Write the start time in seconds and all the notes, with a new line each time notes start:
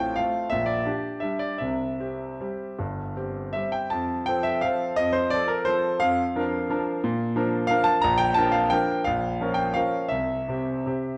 Already playing: A1 A2 C4 F4 G5 A5
0.15 A3 C4 F4 F5
0.49 A#1 A#2 E5
0.66 D5
0.86 D4 G4
1.20 G3 D4 G4 E5
1.39 D5
1.58 C2 C3 E5
2.00 C4 G4
2.40 G3 C4 G4
2.79 G1 G2
3.17 C4 G4
3.53 G3 C4 G4 E5
3.72 G5
3.90 F2 A5
4.26 F3 C4 A4 G5
4.43 E5
4.61 F3 C4 A4 F5
4.96 F2 D#5
5.12 C5
5.30 F3 C4 A4 D5
5.48 A#4
5.65 F3 C4 A4 C5
6.00 F2 F5
6.36 F3 D4 A#4
6.70 F3 D4 A#4
7.04 A#2
7.36 F3 D4 A#4
7.67 F3 D4 A#4 F5
7.84 A5
8.01 A#1 A#5
8.18 G5
8.34 F3 D4 A#4 A5
8.51 F5
8.70 F3 D4 A#4 G5
9.04 A#1 F5
9.40 F3 C#4 A#4
9.54 G5
9.74 F3 C#4 A#4 F5
10.09 C2 E5
10.48 C3 C4 G4
10.86 C3 C4 G4